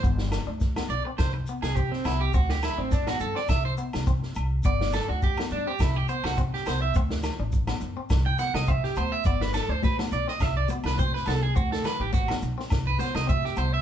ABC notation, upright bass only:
X:1
M:4/4
L:1/16
Q:"Swing 16ths" 1/4=104
K:G
V:1 name="Upright bass" clef=bass
G,,,3 D,,3 B,,, z C,,2 z C,,2 z C,,2 | D,,3 A,,,3 G,, z C,,2 z C,,2 z C,,2 | G,,,3 D,,3 G,, z C,,2 z C,,2 z C,,2 | D,,3 A,,,3 F,, z C,,2 z C,,2 z D,,2 |
G,,,3 D,,3 B,,, z C,,2 z C,,2 z C,,2 | D,,3 A,,,3 B,,, z C,,2 z C,,2 z C,,2 |]